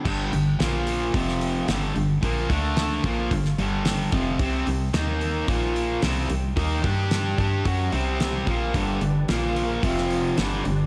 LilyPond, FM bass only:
\new Staff \with { instrumentName = "FM bass" } { \clef bass \time 4/4 \key c \lydian \tempo 4 = 110 g,,8 g,,8 bes,,4 f,,4 g,,8 g,,8 | bes,,8 d,4 bes,,8 g,,8 g,,4 f,,8 | c,8 c,8 ees,4 bes,,4 c,8 c,8 | ees,8 g,4 g,8 fis,8 c,4 bes,,8 |
g,,8 g,,8 bes,,4 f,,4 g,,8 g,,8 | }